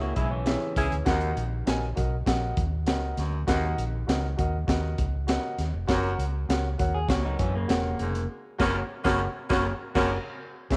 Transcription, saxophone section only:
0.16 C#4 E4 G#4
0.77 C#4 E4 G#4
8.60 A#3 C#4 F#4
9.04 A#3 C#4 F#4
9.49 A#3 C#4 F#4
9.95 A#3 C#4 F#4

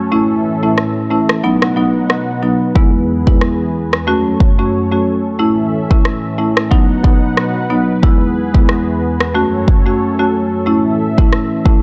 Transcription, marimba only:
0.12 A3 C#4 E4
0.63 A3 C#4 E4
1.11 A3 C#4 E4
1.44 F#3 B3 D#4
1.76 F#3 B3 D#4
2.42 F#3 B3 D#4
2.75 G#3 B3 E4
3.27 G#3 B3 E4
4.07 A3 C#4 F#4
4.59 A3 C#4 F#4
4.92 A3 C#4 F#4
5.39 A3 C#4 E4
5.90 A3 C#4 E4
6.38 A3 C#4 E4
6.71 F#3 B3 D#4
7.04 F#3 B3 D#4
7.70 F#3 B3 D#4
8.03 G#3 B3 E4
8.54 G#3 B3 E4
9.34 A3 C#4 F#4
9.86 A3 C#4 F#4
10.19 A3 C#4 F#4
10.66 A3 C#4 E4
11.18 A3 C#4 E4
11.65 A3 C#4 E4

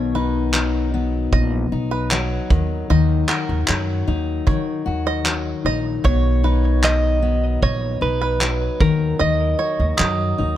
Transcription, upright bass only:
Already playing: B1
1.33 A#1
1.72 B1
2.51 D#2
2.90 D#2
3.49 D#2
3.69 F#2
4.08 D#2
4.47 D#3
4.87 D#2
5.65 A#1
6.05 B1
7.63 A#1
8.02 B1
8.80 D#2
9.21 D#2
9.80 D#2
10.00 F#2
10.39 D#2

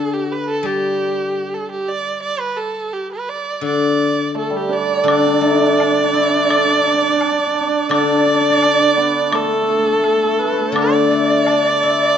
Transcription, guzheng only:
Already playing: D3
0.63 G3
3.61 D3
5.04 D3
5.41 A3
5.78 D4
6.13 E4
6.49 A4
7.89 D3
10.72 D3
11.11 A3
11.48 D4
11.83 E4

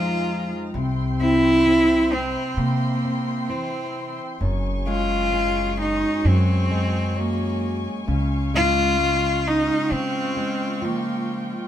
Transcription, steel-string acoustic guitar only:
Already playing: F2 F3 G#3 D#4 G#4
0.75 C3
1.21 C4
1.66 C4
3.05 C4
3.50 E3
4.41 F#2
4.87 G#3
5.33 G#3
6.71 G#3
7.16 F#3
8.08 C#3
8.54 G#3
9.00 G#3
10.37 G#3
10.82 F3

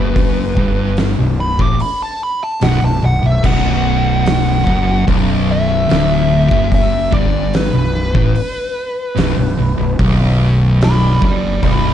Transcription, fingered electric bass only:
Already playing: F#1
0.57 G1
1.19 B0
1.59 A1
2.62 B0
2.83 B0
3.03 B0
3.24 B0
3.44 B0
4.67 F#1
5.08 B0
5.91 D1
6.51 F#1
7.13 G1
7.74 B0
8.15 A1
9.17 B0
9.37 B0
9.58 B0
9.79 B0
9.99 B0
11.22 F#1
11.63 B0

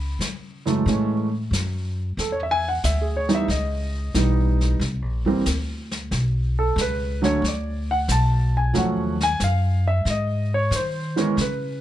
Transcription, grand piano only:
Already playing: B5
0.66 F#2 C#3 E3 G#3 A3
0.87 E3 G#3 A3 C#4
2.20 A4
2.32 C#5
2.43 E5
2.51 G#5
2.68 F#5
2.85 E5
3.01 G#4
3.17 C#5
3.29 E3 G3 B3 D#4
3.35 E5
3.51 D#5
4.15 E3 G3 B3 D#4
5.26 E3 G3 A#3 C4
6.59 A4
6.81 B4
7.22 D3 F#3 A3 C#4 C#5
7.48 D5
7.91 F#5
8.12 A5
8.57 G#5
8.73 F3 F#3 A3 C#4
8.78 F#5
9.23 G#5
9.44 F5
9.88 E5
10.10 D#5
10.54 C#5
10.76 C5
11.16 E3 G#3 B3 C#4 A#4
11.41 B4

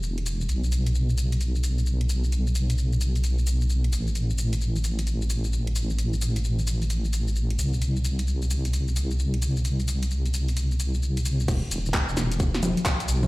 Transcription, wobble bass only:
Already playing: E1
0.49 B1
3.93 A1
7.59 C2
11.48 E1
11.71 E1
11.86 E1
12.09 E1
13.08 B1

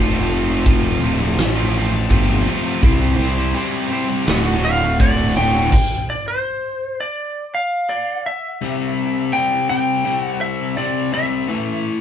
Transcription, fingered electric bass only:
Already playing: F1
1.02 D1
1.38 A1
2.11 G1
2.83 C2
3.18 C2
4.28 D1
5.36 D1

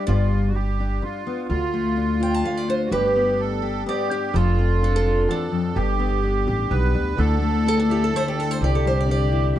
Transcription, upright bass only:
0.08 G1
1.50 D2
2.92 G1
4.34 F1
5.76 G1
6.47 A1
6.71 B1
6.95 D2
7.18 D2
8.61 C2

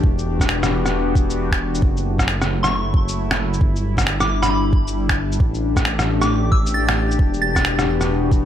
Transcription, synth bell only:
2.63 C#6
4.20 D6
4.42 B5
4.50 B5
6.21 D6
6.52 E6
6.74 A6
7.42 A6
7.55 A6

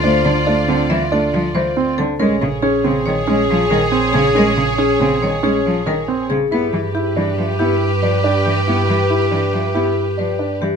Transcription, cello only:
0.04 A3
0.25 D3
0.47 A3
0.68 D3
0.90 E3
1.12 A3
1.33 F3
1.55 E3
1.98 D3
2.20 G#3
2.42 C#3
2.85 C#3
3.07 D#3
3.28 G#3
3.50 F3
3.71 D#3
4.14 C#3
4.36 G#3
4.57 C#3
5.01 C#3
5.22 D#3
5.44 G#3
5.65 F3
5.86 D#3
6.30 C#3
6.52 B3
6.73 E3
7.17 E3
7.38 F3
7.60 B3
8.02 F3
8.45 E3
8.67 B3
8.89 E3
9.31 E3
9.53 F3
9.75 B3
10.19 F3
10.61 E3

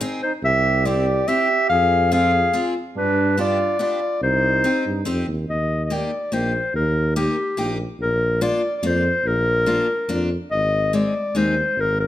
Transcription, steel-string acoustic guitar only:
0.01 C4 D#4 G#4
0.85 C4 E4 G4
1.28 C4 E4 G4
2.12 C4 F4 G#4
2.53 C4 F4 G#4
3.37 B3 D4 G4
3.79 B3 D4 G4
4.64 C4 D#4 G4
5.05 C4 D#4 G4
5.90 A#3 D#4 G4
6.32 A#3 D#4 G4
7.16 A#3 D#4 G4
7.57 A#3 D#4 G4
8.41 A#3 D4 F4
8.83 A#3 D4 F4
9.66 A#3 D4 F4
10.09 A#3 D4 F4
10.93 G#3 C4 D#4
11.35 G#3 C4 D#4

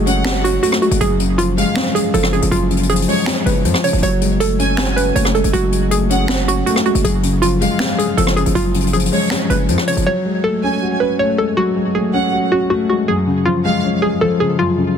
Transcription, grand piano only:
Already playing: F#3 G#3 A3 C#4 F#4
0.06 C#4
0.25 F#4
0.44 C#4
0.63 A3
0.82 G#3
1.01 F#2
1.19 C#3
1.38 F3
1.58 G#3
1.76 C#4
1.95 G#3
2.14 F3
2.33 C#3
2.52 F#2
2.70 C#3
2.90 F3
3.08 G#3
3.27 C#4
3.46 G#3
3.65 F3
3.84 C#3
4.02 F#3
4.21 G#3
4.40 A3
4.59 C#4
4.78 F#4
4.97 C#4
5.16 A3
5.34 G#3
5.53 F#3
5.72 G#3
5.91 A3
6.10 C#4
6.29 F#4
6.48 C#4
6.67 A3
6.86 G#3
7.04 F#2
7.23 C#3
7.42 F3
7.61 G#3
7.80 C#4
7.99 G#3
8.18 F3
8.37 C#3
8.55 F#2
8.74 C#3
8.93 F3
9.12 G#3
9.31 C#4
9.50 G#3
9.69 F3
9.87 C#3
10.06 F#3
10.25 G#3
10.44 A3
10.63 C#4
10.82 F#4
11.01 C#4
11.20 A3
11.38 G#3
11.57 F#3
11.76 G#3
11.95 A3
12.14 C#4
12.33 F#4
12.52 C#4
12.71 A3
12.89 G#3
13.08 F#2
13.27 C#3
13.46 F3
13.65 G#3
13.84 C#4
14.03 G#3
14.22 F3
14.41 C#3
14.59 F#2
14.78 C#3

